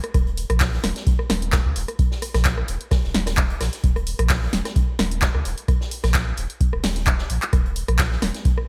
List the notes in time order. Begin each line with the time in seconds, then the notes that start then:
0.04 cross-stick, closed hi-hat
0.14 D#1, kick, cross-stick, closed hi-hat
0.27 closed hi-hat
0.37 closed hi-hat, open hi-hat
0.50 A#1, cross-stick, closed hi-hat
0.60 kick, snare, clap, closed hi-hat, open hi-hat
0.74 snare
0.83 D#1, cross-stick, snare, closed hi-hat, open hi-hat
0.96 snare, closed hi-hat
1.07 kick, closed hi-hat
1.19 cross-stick
1.30 D#1, cross-stick, snare, closed hi-hat, open hi-hat
1.42 closed hi-hat
1.52 kick, cross-stick, snare, clap, closed hi-hat
1.65 C#2
1.75 D#1, closed hi-hat, open hi-hat
1.88 cross-stick, closed hi-hat
1.99 kick, closed hi-hat
2.11 snare
2.22 cross-stick, closed hi-hat, open hi-hat
2.34 A#1, cross-stick, snare, open hi-hat
2.45 kick, snare, clap, closed hi-hat
2.58 cross-stick
2.68 D#1, closed hi-hat, open hi-hat
2.81 closed hi-hat
2.91 kick, cross-stick, snare, closed hi-hat, open hi-hat
3.04 D#1, snare
3.15 D#1, snare, open hi-hat
3.26 cross-stick, snare, closed hi-hat, open hi-hat
3.37 kick, snare, clap, closed hi-hat
3.50 closed hi-hat
3.61 A#1, cross-stick, snare, open hi-hat
3.73 snare, closed hi-hat
3.83 D#1, kick, closed hi-hat
3.96 cross-stick, closed hi-hat
4.07 closed hi-hat, open hi-hat
4.19 A#1, cross-stick, closed hi-hat
4.29 kick, cross-stick, snare, clap, closed hi-hat, open hi-hat
4.42 snare
4.53 D#1, snare, closed hi-hat, open hi-hat
4.65 cross-stick, snare, closed hi-hat
4.76 kick, closed hi-hat
4.99 D#1, cross-stick, snare, closed hi-hat, open hi-hat
5.11 closed hi-hat
5.22 kick, snare, clap, closed hi-hat
5.35 C#2, cross-stick
5.45 D#1, closed hi-hat, open hi-hat
5.58 closed hi-hat
5.68 kick, cross-stick, closed hi-hat
5.81 snare
5.91 closed hi-hat, open hi-hat
6.03 A#1, cross-stick, snare, open hi-hat
6.14 kick, snare, clap, closed hi-hat
6.37 D#1, closed hi-hat, open hi-hat
6.50 closed hi-hat
6.60 kick, closed hi-hat
6.73 D#1, cross-stick
6.84 D#1, snare, open hi-hat
6.96 snare, closed hi-hat
7.07 kick, clap, closed hi-hat
7.18 snare
7.30 A#1, closed hi-hat, open hi-hat
7.42 clap, closed hi-hat
7.53 D#1, kick, cross-stick, closed hi-hat
7.65 closed hi-hat
7.76 closed hi-hat, open hi-hat
7.88 A#1, cross-stick, closed hi-hat
7.99 kick, snare, clap, closed hi-hat, open hi-hat
8.12 snare
8.22 D#1, cross-stick, snare, closed hi-hat, open hi-hat
8.34 snare, closed hi-hat
8.45 kick, closed hi-hat
8.58 cross-stick